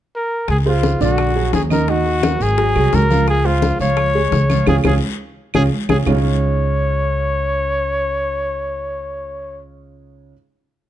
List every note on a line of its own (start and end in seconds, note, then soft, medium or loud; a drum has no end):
0.16 0.47 A#4 medium
0.48 0.97 C#2 medium
0.48 0.58 G#4 medium
0.48 high bongo medium
0.48 high conga soft
0.48 long guiro medium
0.48 claves medium
0.66 0.94 G#3 medium
0.66 1.00 F4 medium
0.66 0.95 G#4 medium
0.66 0.95 C5 medium
0.66 high bongo soft
0.66 high conga soft
0.83 high bongo medium
0.83 high conga medium
0.83 short guiro medium
1.01 1.49 A#1 medium
1.01 1.29 D3 medium
1.01 1.30 D4 medium
1.01 1.51 F#4 medium
1.01 1.30 D5 medium
1.01 high bongo soft
1.01 high conga soft
1.01 short guiro medium
1.18 high bongo medium
1.18 high conga soft
1.18 long guiro medium
1.18 claves medium
1.36 1.64 F#3 medium
1.36 1.65 F#4 medium
1.36 1.65 G#4 medium
1.36 high conga soft
1.53 2.35 D#2 medium
1.53 1.62 G#4 medium
1.53 high bongo medium
1.53 low bongo medium
1.53 high conga medium
1.53 short guiro medium
1.70 1.85 D#3 medium
1.70 1.85 D#4 medium
1.70 1.91 A#4 medium
1.70 1.85 D#5 medium
1.70 high bongo soft
1.70 high conga medium
1.70 short guiro medium
1.70 claves medium
1.88 2.17 D#3 medium
1.88 2.17 D#4 medium
1.88 2.44 F#4 medium
1.88 2.17 D#5 medium
1.88 high bongo medium
1.88 long guiro medium
2.06 high bongo soft
2.06 high conga soft
2.23 2.52 F#3 medium
2.23 2.52 F#4 medium
2.23 2.52 A#4 medium
2.23 high bongo medium
2.23 high conga loud
2.23 short guiro medium
2.23 claves medium
2.40 2.73 G#1 medium
2.40 2.96 G#4 loud
2.40 high bongo soft
2.40 high conga soft
2.40 short guiro medium
2.57 2.72 F#3 medium
2.57 2.72 F#4 medium
2.57 2.72 G#4 medium
2.57 high bongo medium
2.57 high conga soft
2.57 long guiro medium
2.76 2.92 C2 medium
2.76 3.04 F#3 medium
2.76 3.04 F#4 medium
2.76 3.04 G#4 medium
2.76 high conga soft
2.76 claves medium
2.93 3.74 C#2 medium
2.93 3.28 A#4 medium
2.93 high bongo medium
2.93 low bongo medium
2.93 high conga medium
2.93 short guiro medium
3.10 3.39 F3 medium
3.10 3.39 F4 medium
3.10 3.39 F5 medium
3.10 high bongo soft
3.10 high conga medium
3.10 short guiro medium
3.28 3.47 G#4 medium
3.28 high bongo medium
3.28 long guiro medium
3.28 claves medium
3.44 3.73 G#3 medium
3.44 3.80 F4 medium
3.44 3.74 G#4 medium
3.44 3.74 C5 medium
3.44 high bongo soft
3.44 high conga soft
3.62 high bongo medium
3.62 high conga loud
3.62 short guiro medium
3.79 4.28 C#2 medium
3.79 4.08 F3 medium
3.79 4.09 F4 medium
3.79 4.64 C#5 loud
3.79 4.09 F5 medium
3.79 high bongo soft
3.79 high conga soft
3.79 short guiro medium
3.97 high bongo medium
3.97 high conga soft
3.97 long guiro medium
3.97 claves medium
4.15 4.44 G#3 medium
4.15 4.44 G#4 medium
4.15 4.44 C#5 medium
4.15 high conga soft
4.32 4.64 C#2 medium
4.32 high bongo medium
4.32 low bongo medium
4.32 high conga medium
4.32 short guiro medium
4.50 4.64 F3 medium
4.50 4.64 F4 medium
4.50 4.65 F5 medium
4.50 high bongo soft
4.50 high conga medium
4.50 short guiro medium
4.50 claves medium
4.67 4.80 C#2 medium
4.67 4.78 C#4 loud
4.67 4.79 F4 loud
4.67 4.78 G#4 medium
4.67 4.76 G#4 medium
4.67 low bongo loud
4.67 high conga medium
4.67 long guiro medium
4.67 claves medium
4.84 4.97 C#2 medium
4.84 4.96 C#4 medium
4.84 4.96 F4 medium
4.84 4.96 G#4 medium
4.84 4.94 G#4 medium
4.84 low bongo loud
4.84 high conga loud
4.84 long guiro medium
4.84 claves loud
5.54 5.67 C#2 loud
5.54 5.66 C#4 medium
5.54 5.65 F4 loud
5.54 5.66 G#4 loud
5.54 5.63 G#4 medium
5.54 low bongo loud
5.54 high conga medium
5.54 long guiro medium
5.54 claves loud
5.89 6.02 C#2 medium
5.89 6.00 C#4 medium
5.89 6.01 F4 medium
5.89 5.98 G#4 medium
5.89 6.01 G#4 medium
5.89 low bongo medium
5.89 high conga loud
5.89 long guiro medium
5.89 claves medium
6.06 10.32 C#2 medium
6.06 10.32 C#3 medium
6.06 10.32 G#3 medium
6.06 10.32 C#4 medium
6.06 10.32 D#4 medium
6.06 10.32 F4 loud
6.06 9.62 C#5 medium
6.06 low bongo medium
6.06 low conga medium
6.06 long guiro medium
6.06 claves medium